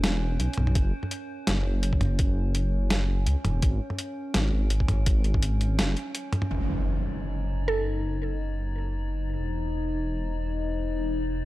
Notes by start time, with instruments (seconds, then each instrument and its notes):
Already playing: detuned saw bass E1, synth drone C#4
0.04 snare, closed hi-hat
0.40 detuned saw bass B1, closed hi-hat
0.53 closed hi-hat
0.58 detuned saw bass B1, mid tom
0.67 mid tom
0.75 detuned saw bass F#1, kick, closed hi-hat
1.03 mid tom
1.11 closed hi-hat
1.47 detuned saw bass F#1, snare, closed hi-hat
1.65 detuned saw bass F#1
1.83 closed hi-hat
1.93 kick
2.01 detuned saw bass F#1, closed hi-hat, mid tom
2.19 kick, closed hi-hat
2.55 closed hi-hat
2.90 snare, closed hi-hat
3.26 detuned saw bass C#2, closed hi-hat
3.45 detuned saw bass E1, closed hi-hat, mid tom
3.62 detuned saw bass G#1, kick, closed hi-hat
3.90 mid tom
3.99 closed hi-hat
4.34 detuned saw bass G#1, snare, closed hi-hat
4.53 detuned saw bass G#1
4.70 closed hi-hat
4.80 kick
4.88 detuned saw bass G#1, closed hi-hat, mid tom
5.06 kick, closed hi-hat
5.24 closed hi-hat
5.34 kick, mid tom
5.43 closed hi-hat
5.61 closed hi-hat
5.79 detuned saw bass F#1, snare, closed hi-hat
5.97 closed hi-hat
6.15 closed hi-hat
6.33 closed hi-hat, mid tom
6.42 mid tom
6.51 detuned saw bass F#1, synth drone D#4, impact
7.68 synth pluck A4
9.38 detuned saw bass E1